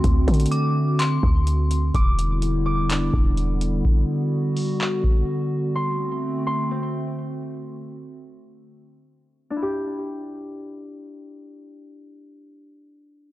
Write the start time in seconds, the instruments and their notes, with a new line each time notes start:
Already playing: ambient pad D3 A3 C4 F#4
0.04 808-style bass D2, kick, closed hi-hat
0.28 808-style bass D3, kick, closed hi-hat
0.34 closed hi-hat
0.40 closed hi-hat
0.46 closed hi-hat
0.51 synth bell D6, closed hi-hat
0.99 synth bell C6, clap, closed hi-hat
1.23 808-style bass D2, kick
1.47 closed hi-hat
1.71 closed hi-hat
1.95 808-style bass E1, ambient pad D3 G3 B3 E4, harp D6, kick, closed hi-hat
2.19 closed hi-hat
2.42 closed hi-hat
2.66 harp D6
2.90 harp D4, clap, closed hi-hat
3.14 808-style bass E1, kick
3.37 closed hi-hat
3.61 closed hi-hat
3.85 ambient pad F#4, kick
4.57 open hi-hat
4.81 clap
5.04 kick
5.75 ambient pad A3 C4, harp C6
6.47 harp C6
6.71 harp C4
9.50 harp D4
9.56 harp E4
9.62 harp G4